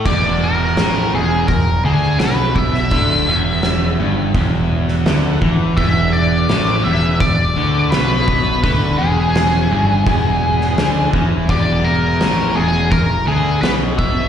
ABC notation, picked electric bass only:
X:1
M:4/4
L:1/8
Q:1/4=84
K:Emix
V:1 name="Picked electric bass" clef=bass
E,,,2 A,,, E,,, E,,, D,, B,,,2 | D,, E,,,2 =G,,, E,,,2 D,, E,, | E,,,2 A,,, E,,, E,,, D,, B,,,2 | D,, E,,,2 =G,,, E,,,2 D,, E,, |
E,,,2 A,,, E,,, E,,, D,, B,,,2 |]